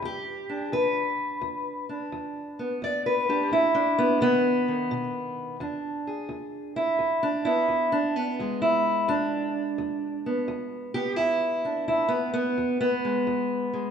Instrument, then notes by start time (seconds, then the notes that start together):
steel-string acoustic guitar
0.02 E2 G4
0.49 D4
0.72 E2 B4
1.41 E2
1.89 D4
2.12 E2
2.59 B3
2.82 E2 D5
3.06 B4
3.29 D4 G4
3.51 E2 E4
3.75 D4
3.98 B3
4.21 B2 D#3 B3
4.68 D#3
4.91 B2
5.60 E2 D4
6.07 G#4
6.29 E2
6.76 E4
6.99 E2
7.23 D4
7.45 B3 E4
7.68 E2
7.92 D4
8.16 B3
8.39 E2 G#3
8.62 E4
9.08 E2 D4
9.78 E2
10.26 B3
10.48 E2
10.94 B3 G4
11.16 E2 E4
11.65 D4
11.88 E2 E4
12.08 B3
12.34 B3
12.58 E2
12.81 B3
13.05 G#3
13.27 E2
13.73 G#3